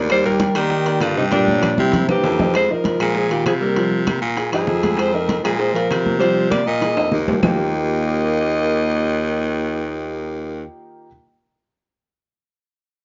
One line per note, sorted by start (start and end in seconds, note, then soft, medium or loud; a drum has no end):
0.00 0.50 D#2 medium
0.00 0.20 A#3 medium
0.00 0.20 A#4 medium
0.00 0.20 D5 medium
0.09 0.25 G3 medium
0.09 0.25 C5 loud
0.09 high bongo medium
0.09 high conga soft
0.09 high timbale medium
0.09 claves medium
0.25 0.50 G3 medium
0.25 0.57 G3 medium
0.25 0.50 G4 medium
0.25 0.58 A#4 loud
0.25 0.51 G5 medium
0.25 high conga soft
0.40 high bongo medium
0.40 high conga medium
0.40 high timbale medium
0.55 1.03 D#3 medium
0.55 0.98 D#3 medium
0.55 0.81 A#3 medium
0.55 1.04 G4 loud
0.55 0.81 A#4 medium
0.55 0.82 D5 medium
0.55 high conga soft
0.55 high timbale medium
0.55 claves medium
0.70 high bongo medium
0.70 high conga soft
0.86 1.11 A#3 medium
0.86 1.11 A#4 medium
0.86 1.12 D5 medium
0.86 high conga soft
0.86 high timbale medium
1.01 1.73 G2 medium
1.01 1.16 D3 medium
1.01 1.17 F4 medium
1.01 high bongo medium
1.01 low bongo medium
1.01 high conga soft
1.01 high timbale medium
1.01 claves medium
1.17 1.24 C3 medium
1.17 1.30 G3 medium
1.17 1.25 D#4 medium
1.17 1.30 G4 medium
1.17 1.30 G5 medium
1.31 1.80 A#2 medium
1.31 1.45 G3 medium
1.31 1.81 D4 loud
1.31 1.45 G4 medium
1.31 1.46 G5 medium
1.31 high bongo medium
1.31 high conga medium
1.31 high timbale medium
1.47 1.74 A#3 medium
1.47 1.74 A#4 medium
1.47 1.74 C#5 medium
1.47 high bongo soft
1.47 high conga medium
1.62 high bongo medium
1.62 low conga medium
1.62 high timbale medium
1.62 claves medium
1.77 2.07 C3 loud
1.77 2.08 C3 medium
1.77 1.91 G3 medium
1.77 2.09 E4 medium
1.77 1.91 G4 medium
1.77 1.92 G5 medium
1.77 high bongo soft
1.77 high conga medium
1.92 2.07 A#3 medium
1.92 2.07 A#4 medium
1.92 high bongo medium
1.92 low conga medium
1.92 high timbale medium
1.96 2.07 C5 medium
2.07 2.23 G2 medium
2.07 2.51 E3 medium
2.07 2.22 A#3 medium
2.07 2.52 G4 medium
2.07 2.23 A#4 medium
2.07 2.23 C5 medium
2.07 high bongo soft
2.07 low conga medium
2.07 high timbale medium
2.07 claves medium
2.23 2.68 F2 medium
2.23 2.37 A#3 medium
2.23 2.37 A#4 medium
2.23 2.37 C5 medium
2.23 high bongo medium
2.23 low bongo medium
2.23 high timbale medium
2.39 2.52 C4 medium
2.39 2.52 C5 medium
2.39 2.52 D#5 medium
2.39 low conga medium
2.39 low timbale medium
2.54 2.72 G#3 medium
2.54 2.74 C5 loud
2.54 high bongo medium
2.54 high conga soft
2.54 high timbale medium
2.54 claves medium
2.70 3.15 F3 medium
2.70 2.95 D#4 medium
2.70 3.19 A#4 medium
2.70 2.96 D#5 medium
2.70 high conga soft
2.84 high bongo medium
2.84 high conga medium
2.84 high timbale medium
3.00 3.43 A#2 loud
3.00 3.25 G#3 medium
3.00 3.26 G#4 medium
3.00 high conga soft
3.00 high timbale medium
3.00 claves medium
3.15 3.32 F3 medium
3.15 3.34 G#4 medium
3.15 high bongo medium
3.15 high conga soft
3.30 3.46 D#3 medium
3.30 3.57 F4 medium
3.30 3.47 G4 medium
3.30 3.57 F5 medium
3.30 high conga soft
3.30 high timbale medium
3.46 4.17 C3 medium
3.46 3.53 F3 medium
3.46 3.54 G#4 medium
3.46 high bongo medium
3.46 low bongo medium
3.46 high conga soft
3.46 high timbale medium
3.46 claves medium
3.61 4.04 G3 medium
3.61 3.74 A#3 medium
3.61 3.74 A#4 medium
3.61 4.05 A#4 medium
3.76 4.02 F3 medium
3.76 4.02 F4 medium
3.76 high bongo medium
3.76 high conga soft
3.76 high timbale medium
3.92 high bongo soft
3.92 high conga soft
4.07 4.33 A#3 medium
4.07 4.33 A#4 medium
4.07 high bongo medium
4.07 high conga medium
4.07 high timbale medium
4.07 claves medium
4.22 4.51 A#2 medium
4.22 high bongo soft
4.22 high conga soft
4.37 4.51 G#4 medium
4.37 4.51 G#5 medium
4.37 high bongo medium
4.37 high conga soft
4.37 high timbale medium
4.52 4.67 G2 medium
4.52 5.00 F3 medium
4.52 4.79 D#4 medium
4.52 5.00 G#4 medium
4.52 4.79 D#5 medium
4.52 high bongo soft
4.52 high conga soft
4.52 high timbale medium
4.52 claves medium
4.67 5.39 F2 medium
4.67 high bongo medium
4.67 low bongo medium
4.67 high conga soft
4.84 5.09 G#3 medium
4.84 5.09 G#4 medium
4.84 high conga medium
4.84 high timbale medium
4.97 5.15 G#3 medium
4.97 5.16 C5 medium
4.97 high bongo medium
4.97 high conga soft
4.97 high timbale medium
4.97 claves medium
5.13 5.42 F3 medium
5.13 5.39 D#4 medium
5.13 5.44 A#4 medium
5.13 5.40 D#5 medium
5.13 high conga soft
5.29 high bongo medium
5.29 high conga medium
5.29 high timbale medium
5.42 5.87 A#2 medium
5.42 5.58 F3 medium
5.42 5.70 G#3 medium
5.42 5.61 G#4 medium
5.42 5.70 G#4 medium
5.42 high conga soft
5.42 high timbale medium
5.42 claves medium
5.57 5.73 G#3 medium
5.57 5.74 C5 medium
5.57 high bongo medium
5.57 high conga soft
5.73 6.17 F3 medium
5.73 6.01 F4 medium
5.73 6.18 A#4 medium
5.73 6.01 F5 medium
5.73 high conga soft
5.73 high timbale medium
5.90 6.61 C3 medium
5.90 high bongo medium
5.90 low bongo medium
5.90 high conga soft
5.90 high timbale medium
5.90 claves medium
6.06 6.19 A#3 medium
6.06 6.19 A#4 medium
6.06 high conga medium
6.19 6.47 F3 medium
6.19 6.48 G3 medium
6.19 6.47 F4 medium
6.19 6.49 C5 loud
6.19 high bongo medium
6.19 high conga soft
6.19 high timbale medium
6.36 high bongo soft
6.36 high conga soft
6.50 6.65 A#3 medium
6.50 6.77 A#3 medium
6.50 6.77 A#4 medium
6.50 6.68 D5 medium
6.50 high bongo medium
6.50 high conga medium
6.50 high timbale medium
6.50 claves medium
6.65 6.95 A#2 medium
6.65 7.27 A#3 medium
6.65 7.28 D#5 loud
6.65 high bongo soft
6.65 high conga soft
6.81 6.96 G#4 medium
6.81 6.96 G#5 medium
6.81 high bongo medium
6.81 high conga soft
6.81 high timbale medium
6.97 7.11 F2 medium
6.97 7.23 D#4 medium
6.97 7.23 D#5 medium
6.97 high conga soft
6.97 high timbale medium
6.97 claves medium
7.12 7.40 D#2 medium
7.12 low bongo medium
7.12 high conga soft
7.27 7.40 G3 medium
7.27 7.40 G4 medium
7.27 high conga medium
7.27 low timbale medium
7.33 low bongo medium
7.43 10.63 D#2 medium
7.43 11.06 D#3 medium
7.43 10.63 A#3 medium
7.43 11.06 A#3 medium
7.43 11.06 D#4 medium
7.43 11.07 F4 medium
7.43 11.07 G4 loud
7.43 10.64 D#5 medium
7.43 low bongo medium
7.43 low conga medium
7.43 low timbale medium
7.43 claves medium